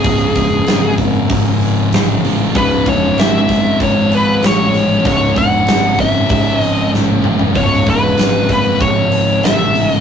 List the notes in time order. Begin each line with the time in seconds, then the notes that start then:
Already playing: G#4
0.02 C#1 C#2 G#2 C#3, kick, open hi-hat
0.35 E1, kick, open hi-hat
0.67 G#1, snare, open hi-hat
0.97 kick, open hi-hat
1.30 G#1, kick, open hi-hat
1.61 open hi-hat
1.92 A1, snare, open hi-hat
2.23 C#2 G#2 C#3, open hi-hat
2.53 C#1 C#2 G#2 C#3 B4, kick, open hi-hat
2.86 E1 C#5, kick, open hi-hat
3.17 G#1 E5, snare, open hi-hat
3.49 kick, snare, open hi-hat
3.80 G#1 C#5, kick, open hi-hat
4.12 B4, open hi-hat
4.43 A1 C#5, snare, open hi-hat
4.71 C#2 G#2 C#3, open hi-hat
5.04 C#1 C#2 G#2 C#3 C#5, kick, open hi-hat
5.36 E1 F#5, kick, open hi-hat
5.67 G#1, snare, open hi-hat
5.98 E5, kick, open hi-hat
6.29 G#1, kick, open hi-hat
6.61 D#5, open hi-hat
6.94 A1, snare
7.08 high tom
7.23 C#2 G#2 C#3, mid tom
7.39 floor tom
7.54 C#1 C#2 G#2 C#3 C#5, kick, open hi-hat
7.86 E1 B4, kick, open hi-hat
8.18 G#1, snare, open hi-hat
8.49 B4, kick, snare, open hi-hat
8.81 G#1 C#5, kick, open hi-hat
9.12 open hi-hat
9.43 A1 E5, snare, open hi-hat
9.74 C#2 G#2 C#3, open hi-hat
9.90 D#5